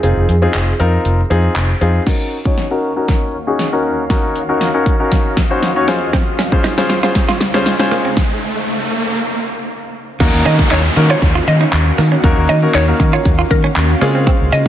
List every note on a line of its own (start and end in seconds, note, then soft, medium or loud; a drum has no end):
0.00 0.12 F1 loud
0.00 0.33 C4 medium
0.00 0.33 D#4 medium
0.00 0.33 F4 medium
0.00 0.80 G#4 medium
0.00 0.33 G#4 medium
0.00 closed hi-hat loud
0.17 0.25 F1 medium
0.29 0.45 F2 loud
0.29 closed hi-hat medium
0.42 0.71 C4 medium
0.42 0.71 D#4 medium
0.42 0.71 F4 medium
0.42 0.71 G#4 medium
0.54 0.71 F1 loud
0.54 clap loud
0.54 closed hi-hat medium
0.79 0.96 F2 medium
0.79 1.19 C4 medium
0.79 1.19 D#4 medium
0.79 1.19 F4 medium
0.79 1.20 A#4 loud
0.79 closed hi-hat medium
1.05 1.22 F1 loud
1.05 closed hi-hat medium
1.30 1.47 F2 loud
1.30 1.70 C4 medium
1.30 1.70 D#4 medium
1.30 1.70 F4 medium
1.30 1.70 G#4 loud
1.30 closed hi-hat medium
1.56 1.72 F1 loud
1.56 clap loud
1.56 closed hi-hat medium
1.81 1.98 F2 loud
1.81 2.01 C4 medium
1.81 2.01 D#4 medium
1.81 2.01 F4 medium
1.81 2.01 G#4 medium
1.81 closed hi-hat medium
2.07 5.84 D#2 medium
2.07 5.84 D#3 medium
2.07 2.36 C#4 medium
2.07 2.36 D#4 medium
2.07 5.84 F#4 medium
2.07 2.36 F#4 medium
2.07 2.36 A#4 loud
2.07 4.08 C#5 medium
2.07 8.13 F5 medium
2.07 kick loud
2.07 snare medium
2.07 crash loud
2.07 riser medium
2.45 2.65 C#4 medium
2.45 2.65 D#4 medium
2.45 2.65 F#4 medium
2.45 2.65 C#5 loud
2.45 kick medium
2.58 snare medium
2.71 2.90 C#4 medium
2.71 2.90 D#4 medium
2.71 2.90 F#4 medium
2.71 2.90 A#4 loud
2.96 3.35 C#4 medium
2.96 3.35 D#4 medium
2.96 3.35 F#4 medium
2.96 3.35 A#4 medium
3.08 kick medium
3.08 snare medium
3.47 3.66 C#4 medium
3.47 3.66 D#4 medium
3.47 3.66 F#4 medium
3.47 3.67 G#4 medium
3.59 snare medium
3.72 4.02 C#4 medium
3.72 4.02 D#4 medium
3.72 4.02 F#4 medium
3.72 4.02 A#4 loud
4.10 4.39 C#4 medium
4.10 4.40 D#4 medium
4.10 4.40 F#4 medium
4.10 4.40 A#4 loud
4.10 5.86 D#5 medium
4.10 kick loud
4.10 snare medium
4.10 closed hi-hat loud
4.36 closed hi-hat medium
4.49 4.68 C#4 medium
4.49 4.68 D#4 medium
4.49 4.68 F#4 medium
4.49 4.68 A#4 medium
4.61 snare medium
4.61 closed hi-hat medium
4.74 4.93 C#4 medium
4.74 4.94 D#4 medium
4.74 4.94 F#4 medium
4.74 4.94 A#4 loud
4.86 kick medium
4.86 closed hi-hat medium
5.00 5.38 C#4 medium
5.00 5.38 D#4 medium
5.00 5.38 F#4 medium
5.00 5.38 A#4 medium
5.12 kick medium
5.12 snare medium
5.12 closed hi-hat medium
5.37 kick medium
5.37 snare medium
5.37 closed hi-hat medium
5.50 5.70 C#4 medium
5.50 5.70 D#4 medium
5.50 5.70 F#4 medium
5.50 5.70 C5 medium
5.63 snare medium
5.63 closed hi-hat medium
5.76 5.86 C#4 medium
5.76 5.88 D#4 medium
5.76 5.88 F#4 medium
5.76 5.88 C#5 loud
5.88 8.15 C#2 medium
5.88 8.15 C#3 medium
5.88 6.39 C#4 medium
5.88 8.15 D#4 medium
5.88 6.39 F4 medium
5.88 6.39 G#4 medium
5.88 8.15 C5 medium
5.88 6.39 C5 loud
5.88 snare medium
5.88 closed hi-hat medium
6.13 6.22 C4 medium
6.13 kick loud
6.13 snare medium
6.13 closed hi-hat loud
6.39 6.47 C#4 medium
6.39 snare medium
6.39 closed hi-hat medium
6.52 6.71 C#4 medium
6.52 6.72 F4 medium
6.52 6.72 G#4 medium
6.52 6.72 C5 medium
6.52 muted clean electric guitar stroke soft
6.52 kick medium
6.64 6.72 D#4 medium
6.64 snare loud
6.64 closed hi-hat medium
6.78 6.97 C#4 medium
6.78 6.97 F4 medium
6.78 6.97 G#4 medium
6.78 6.97 C5 loud
6.78 snare loud
6.89 muted clean electric guitar stroke soft
6.89 snare loud
6.89 closed hi-hat medium
7.03 7.42 C#4 medium
7.03 7.11 F4 medium
7.03 7.42 F4 medium
7.03 7.42 G#4 medium
7.03 7.42 C5 loud
7.03 snare loud
7.15 kick medium
7.15 snare loud
7.15 closed hi-hat medium
7.29 7.36 F4 medium
7.29 snare loud
7.41 muted clean electric guitar stroke soft
7.41 snare loud
7.41 closed hi-hat medium
7.54 7.73 C#4 medium
7.54 7.61 C#4 medium
7.54 7.73 F4 medium
7.54 7.73 G#4 medium
7.54 7.73 C5 loud
7.54 snare loud
7.66 muted clean electric guitar stroke soft
7.66 snare loud
7.66 closed hi-hat loud
7.79 8.09 C#4 medium
7.79 8.09 F4 medium
7.79 8.09 G#4 medium
7.79 8.09 C5 loud
7.79 snare loud
7.91 8.00 A#3 medium
7.91 open hi-hat medium
8.05 8.12 C4 medium
8.17 kick loud
8.17 snare medium
10.20 10.29 D#2 loud
10.20 13.98 D#3 medium
10.20 10.79 A#3 loud
10.20 10.29 A#3 medium
10.20 13.98 A#3 medium
10.20 10.79 C#4 medium
10.20 13.98 C#4 medium
10.20 10.79 D#4 medium
10.20 13.98 F#4 medium
10.20 10.79 F#4 medium
10.20 10.79 A#4 loud
10.20 14.68 F5 medium
10.20 kick loud
10.20 closed hi-hat loud
10.20 crash loud
10.20 downlifter medium
10.34 10.41 D#2 loud
10.46 10.62 D#3 loud
10.46 10.54 C#4 medium
10.46 10.57 D#5 medium
10.46 closed hi-hat medium
10.59 muted clean electric guitar stroke soft
10.59 kick medium
10.71 10.88 D#2 medium
10.71 10.79 D#4 medium
10.71 10.82 C#5 medium
10.71 clap loud
10.71 closed hi-hat medium
10.96 11.13 D#3 loud
10.96 11.07 A#3 medium
10.96 11.07 C#4 medium
10.96 11.07 D#4 medium
10.96 11.07 F#4 medium
10.96 11.07 A#4 medium
10.96 muted clean electric guitar stroke soft
10.96 closed hi-hat medium
11.10 11.88 A#3 medium
11.10 11.88 C#4 medium
11.10 11.88 D#4 medium
11.10 11.17 F4 medium
11.10 11.88 F#4 medium
11.10 11.88 C5 medium
11.10 11.20 C#5 medium
11.22 11.39 D#2 loud
11.22 kick loud
11.22 closed hi-hat loud
11.35 11.43 F4 medium
11.47 11.64 D#3 loud
11.47 11.84 D#5 medium
11.47 muted clean electric guitar stroke medium
11.47 closed hi-hat medium
11.61 11.68 D#4 medium
11.73 11.89 D#2 loud
11.73 muted clean electric guitar stroke soft
11.73 clap loud
11.73 closed hi-hat loud
11.98 12.15 D#3 loud
11.98 12.07 A#3 medium
11.98 open hi-hat medium
12.12 12.19 C#4 medium
12.24 12.32 D#2 loud
12.24 12.53 A#3 loud
12.24 12.32 A#3 medium
12.24 12.53 C#4 medium
12.24 12.53 D#4 medium
12.24 12.53 F#4 medium
12.24 12.53 A#4 loud
12.24 kick loud
12.24 closed hi-hat loud
12.37 12.45 D#2 loud
12.49 12.66 D#3 loud
12.49 12.57 C#4 medium
12.49 12.60 D#5 medium
12.49 closed hi-hat medium
12.62 12.82 A#3 medium
12.62 12.82 C#4 medium
12.62 12.82 D#4 medium
12.62 12.82 F#4 medium
12.62 12.82 A#4 medium
12.62 muted clean electric guitar stroke soft
12.74 12.91 D#2 loud
12.74 12.83 D#4 loud
12.74 12.86 C#5 medium
12.74 clap loud
12.74 closed hi-hat medium
12.88 13.66 A#3 medium
12.88 13.66 C#4 medium
12.88 13.66 D#4 medium
12.88 13.66 F#4 medium
12.88 13.66 A#4 medium
13.00 13.16 D#3 loud
13.00 muted clean electric guitar stroke soft
13.00 kick loud
13.00 closed hi-hat medium
13.13 13.21 F4 medium
13.13 13.23 C#5 medium
13.25 13.42 D#2 loud
13.25 kick loud
13.25 closed hi-hat loud
13.39 13.46 F4 medium
13.51 13.67 D#3 loud
13.51 13.87 A#4 medium
13.51 muted clean electric guitar stroke soft
13.51 kick medium
13.51 closed hi-hat medium
13.64 13.71 C#4 medium
13.76 13.93 D#2 loud
13.76 muted clean electric guitar stroke soft
13.76 clap loud
13.76 closed hi-hat loud
14.01 14.27 C#3 loud
14.01 14.68 C#3 medium
14.01 14.68 G#3 medium
14.01 14.10 A#3 medium
14.01 14.68 C4 medium
14.01 14.68 C#4 medium
14.01 14.68 D#4 medium
14.01 14.68 F4 medium
14.01 14.68 G#4 loud
14.01 14.68 C5 medium
14.01 open hi-hat medium
14.15 14.22 C4 medium
14.27 14.35 C4 medium
14.27 kick loud
14.27 closed hi-hat loud
14.41 14.48 C#2 medium
14.52 14.68 C#3 loud
14.52 14.61 C#4 medium
14.52 14.63 D#5 medium
14.52 closed hi-hat medium